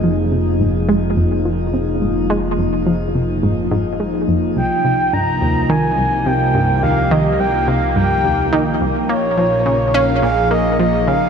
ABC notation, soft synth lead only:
X:1
M:4/4
L:1/8
Q:1/4=106
K:Fm
V:1 name="Soft synth lead"
z8 | z8 | g2 b2 a2 g2 | f e g f g3 z |
d3 f f e e f |]